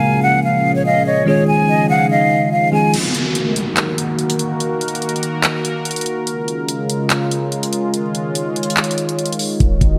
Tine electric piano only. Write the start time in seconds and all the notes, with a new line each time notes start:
Already playing: C#3 G#3 A#3 F4 A#4
1.26 D#3 G#3 C#4 F4 G#4
2.72 D#3 G#3 C#4 F4 G#4